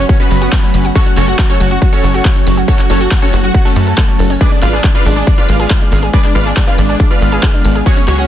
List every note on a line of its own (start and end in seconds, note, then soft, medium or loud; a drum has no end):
0.00 4.37 F#3 medium
0.00 4.37 A3 medium
0.00 4.37 C#4 medium
0.00 downlifter medium
0.09 0.19 F#3 medium
0.09 0.18 C#4 medium
0.09 0.18 C#5 medium
0.09 kick loud
0.09 closed hi-hat medium
0.20 0.87 B3 medium
0.20 0.87 C#4 medium
0.20 0.29 C#4 medium
0.20 0.87 F#4 medium
0.20 0.87 B4 loud
0.20 0.87 B5 loud
0.20 closed hi-hat medium
0.31 0.49 F#1 medium
0.31 0.37 F#3 medium
0.31 open hi-hat loud
0.41 0.51 F#4 loud
0.41 closed hi-hat medium
0.52 0.59 F#3 medium
0.52 kick loud
0.52 clap loud
0.52 closed hi-hat medium
0.63 0.67 C#4 loud
0.63 closed hi-hat medium
0.74 0.92 F#1 medium
0.74 0.80 F#3 medium
0.74 open hi-hat loud
0.85 0.91 F#4 medium
0.85 closed hi-hat medium
0.95 0.99 F#3 loud
0.95 1.04 C#4 medium
0.95 1.04 F#4 medium
0.95 1.04 A4 medium
0.95 1.04 C#5 loud
0.95 1.04 C#6 loud
0.95 kick loud
0.95 closed hi-hat medium
1.06 1.10 C#4 medium
1.06 1.15 F#4 medium
1.06 1.15 F#5 medium
1.06 closed hi-hat medium
1.17 1.35 F#1 loud
1.17 1.27 F#3 medium
1.17 1.25 C#4 medium
1.17 1.25 F#4 medium
1.17 1.25 A4 medium
1.17 1.25 C#5 medium
1.17 1.25 C#6 medium
1.17 clap soft
1.17 open hi-hat loud
1.28 1.36 F#4 medium
1.28 1.37 F#4 loud
1.28 1.36 F#5 medium
1.28 closed hi-hat medium
1.39 1.45 F#3 medium
1.39 1.47 F#4 medium
1.39 kick loud
1.39 clap loud
1.39 closed hi-hat medium
1.49 1.56 C#4 loud
1.49 1.58 C#4 medium
1.49 1.58 F#4 medium
1.49 1.58 A4 medium
1.49 1.58 C#5 loud
1.49 1.58 C#6 medium
1.49 closed hi-hat medium
1.60 1.78 F#1 loud
1.60 1.67 F#3 loud
1.60 1.69 F#4 medium
1.60 1.69 F#5 medium
1.60 open hi-hat loud
1.71 1.75 F#4 medium
1.71 1.79 F#4 medium
1.71 1.79 F#5 medium
1.71 closed hi-hat medium
1.82 1.91 F#3 medium
1.82 1.90 F#4 medium
1.82 1.90 F#5 medium
1.82 kick loud
1.82 closed hi-hat medium
1.93 2.02 C#4 medium
1.93 2.60 C#4 medium
1.93 2.60 F#4 medium
1.93 2.60 A4 medium
1.93 2.60 C#5 loud
1.93 2.60 C#6 loud
1.93 closed hi-hat medium
2.03 2.21 F#1 medium
2.03 2.13 F#3 medium
2.03 open hi-hat loud
2.14 2.24 F#4 loud
2.14 closed hi-hat medium
2.25 2.34 F#3 medium
2.25 kick loud
2.25 clap loud
2.25 closed hi-hat medium
2.36 2.40 C#4 medium
2.36 closed hi-hat medium
2.47 2.64 F#1 medium
2.47 2.53 F#3 medium
2.47 open hi-hat loud
2.57 2.61 F#4 medium
2.57 closed hi-hat medium
2.68 2.77 C#4 medium
2.68 2.77 F#4 medium
2.68 2.77 A4 medium
2.68 2.77 C#5 loud
2.68 2.76 C#6 loud
2.68 kick loud
2.68 closed hi-hat medium
2.79 2.88 C#4 medium
2.79 2.87 F#4 medium
2.79 2.87 F#5 medium
2.79 clap soft
2.79 open hi-hat medium
2.90 3.08 F#1 loud
2.90 2.99 F#3 medium
2.90 2.98 C#4 medium
2.90 2.98 F#4 medium
2.90 2.98 A4 medium
2.90 2.98 C#5 medium
2.90 2.98 C#6 medium
2.90 open hi-hat loud
3.00 3.10 F#4 loud
3.00 3.09 F#4 medium
3.00 3.09 F#5 medium
3.00 closed hi-hat soft
3.11 3.20 F#4 medium
3.11 3.20 F#5 medium
3.11 kick loud
3.11 clap loud
3.11 closed hi-hat medium
3.22 3.32 C#4 medium
3.22 3.31 C#4 medium
3.22 3.31 F#4 medium
3.22 3.31 A4 medium
3.22 3.31 C#5 loud
3.22 3.31 C#6 medium
3.22 closed hi-hat soft
3.33 3.51 F#1 loud
3.33 3.39 F#3 medium
3.33 3.41 F#4 medium
3.33 3.41 F#5 medium
3.33 open hi-hat loud
3.44 3.50 F#4 medium
3.44 3.52 F#4 medium
3.44 3.52 F#5 medium
3.44 closed hi-hat soft
3.54 3.64 F#3 medium
3.54 3.63 F#4 medium
3.54 3.63 F#5 medium
3.54 kick loud
3.54 closed hi-hat medium
3.65 4.32 A3 medium
3.65 4.32 C#4 medium
3.65 3.75 C#4 medium
3.65 4.32 F#4 medium
3.65 4.32 A4 loud
3.65 4.32 A5 loud
3.65 closed hi-hat soft
3.76 3.94 F#2 medium
3.76 3.80 F#3 medium
3.76 open hi-hat loud
3.87 3.93 A4 medium
3.87 closed hi-hat soft
3.98 4.01 A3 medium
3.98 kick loud
3.98 clap loud
3.98 closed hi-hat medium
4.08 4.18 C#5 medium
4.08 closed hi-hat medium
4.19 4.37 F#1 medium
4.19 4.23 A3 medium
4.19 open hi-hat loud
4.30 4.36 C#4 loud
4.30 closed hi-hat soft
4.41 4.45 G#3 loud
4.41 7.83 G#3 medium
4.41 7.83 B3 medium
4.41 4.49 D4 medium
4.41 7.83 D4 medium
4.41 4.49 G#4 medium
4.41 4.49 B4 medium
4.41 4.49 D5 loud
4.41 4.49 D6 loud
4.41 kick loud
4.41 closed hi-hat medium
4.52 4.55 D4 medium
4.52 4.60 D4 medium
4.52 4.60 D5 medium
4.52 closed hi-hat soft
4.62 4.80 G#1 loud
4.62 4.72 G#3 medium
4.62 4.71 F4 medium
4.62 4.71 B4 medium
4.62 4.71 D5 medium
4.62 4.71 F5 medium
4.62 4.71 F6 medium
4.62 clap soft
4.62 open hi-hat loud
4.73 4.82 D4 medium
4.73 4.83 G#4 loud
4.73 4.82 D5 medium
4.73 closed hi-hat soft
4.84 4.90 G#3 medium
4.84 4.92 D4 medium
4.84 4.92 D5 medium
4.84 kick loud
4.84 clap loud
4.84 closed hi-hat medium
4.95 5.01 D4 loud
4.95 5.03 F4 medium
4.95 5.03 B4 medium
4.95 5.03 D5 medium
4.95 5.03 F5 loud
4.95 5.03 F6 medium
4.95 closed hi-hat soft
5.06 5.23 G#1 loud
5.06 5.12 G#3 loud
5.06 5.14 D4 medium
5.06 5.14 D5 medium
5.06 open hi-hat loud
5.16 5.25 D4 medium
5.16 5.20 G#4 medium
5.16 5.25 D5 medium
5.16 closed hi-hat medium
5.27 5.36 D4 medium
5.27 5.36 D5 medium
5.27 kick loud
5.27 closed hi-hat medium
5.38 5.47 D4 medium
5.38 6.05 F4 medium
5.38 6.05 B4 medium
5.38 6.05 D5 medium
5.38 6.05 F5 loud
5.38 6.05 F6 loud
5.38 closed hi-hat soft
5.49 5.67 G#1 medium
5.49 5.58 G#3 medium
5.49 open hi-hat loud
5.60 5.69 G#4 loud
5.60 closed hi-hat medium
5.70 5.80 G#3 medium
5.70 kick loud
5.70 clap loud
5.70 closed hi-hat medium
5.81 5.85 D4 medium
5.81 closed hi-hat medium
5.92 6.10 G#1 medium
5.92 5.98 G#3 medium
5.92 open hi-hat loud
6.03 6.07 G#4 medium
6.03 closed hi-hat soft
6.13 6.23 G#3 medium
6.13 6.22 D4 medium
6.13 6.22 G#4 medium
6.13 6.22 B4 medium
6.13 6.22 D5 loud
6.13 6.22 D6 loud
6.13 kick loud
6.13 closed hi-hat medium
6.24 6.34 D4 medium
6.24 6.33 D4 medium
6.24 6.33 D5 medium
6.24 clap soft
6.24 open hi-hat medium
6.35 6.53 G#1 loud
6.35 6.45 G#3 medium
6.35 6.43 F4 medium
6.35 6.43 B4 medium
6.35 6.43 D5 medium
6.35 6.43 F5 medium
6.35 6.43 F6 medium
6.35 open hi-hat loud
6.46 6.54 D4 medium
6.46 6.55 G#4 loud
6.46 6.54 D5 medium
6.46 closed hi-hat medium
6.57 6.65 D4 medium
6.57 kick loud
6.57 clap loud
6.57 closed hi-hat medium
6.67 6.77 D4 medium
6.67 6.76 F4 medium
6.67 6.76 B4 medium
6.67 6.76 D5 medium
6.67 6.76 F5 loud
6.67 6.76 F6 loud
6.67 closed hi-hat medium
6.78 6.96 G#1 loud
6.78 6.85 G#3 medium
6.78 6.87 D4 medium
6.78 6.87 D5 medium
6.78 open hi-hat loud
6.89 6.97 D4 medium
6.89 6.95 G#4 medium
6.89 6.97 D5 medium
6.89 closed hi-hat medium
7.00 7.09 G#3 medium
7.00 7.08 D4 medium
7.00 7.08 D5 medium
7.00 kick loud
7.00 closed hi-hat medium
7.11 7.20 D4 medium
7.11 7.78 F4 medium
7.11 7.78 B4 medium
7.11 7.78 D5 medium
7.11 7.78 F5 loud
7.11 7.78 F6 loud
7.11 closed hi-hat medium
7.21 7.39 G#1 medium
7.21 7.28 G#3 medium
7.21 open hi-hat loud
7.32 7.42 G#4 loud
7.32 closed hi-hat medium
7.43 7.49 G#3 medium
7.43 kick loud
7.43 clap loud
7.43 closed hi-hat medium
7.54 7.58 D4 loud
7.54 closed hi-hat medium
7.65 7.82 G#1 medium
7.65 7.71 G#3 medium
7.65 open hi-hat loud
7.75 7.82 G#4 medium
7.75 closed hi-hat medium
7.86 8.27 C#3 medium
7.86 7.90 F#3 loud
7.86 7.94 C#4 medium
7.86 8.27 C#4 medium
7.86 7.95 F#4 medium
7.86 8.27 F#4 medium
7.86 7.95 G#4 medium
7.86 8.27 G#4 medium
7.86 7.94 C#5 loud
7.86 7.95 C#6 loud
7.86 kick loud
7.86 closed hi-hat medium
7.97 8.01 C#4 medium
7.97 8.05 C#4 medium
7.97 8.05 C#5 medium
7.97 closed hi-hat medium
8.08 8.26 C#2 loud
8.08 8.17 F#3 medium
8.08 8.16 C#4 medium
8.08 8.16 F#4 medium
8.08 8.16 G#4 medium
8.08 8.16 C#5 medium
8.08 8.16 C#6 loud
8.08 clap soft
8.08 open hi-hat loud
8.18 8.27 C#4 medium
8.18 8.27 F#4 loud
8.18 8.27 C#5 medium
8.18 closed hi-hat medium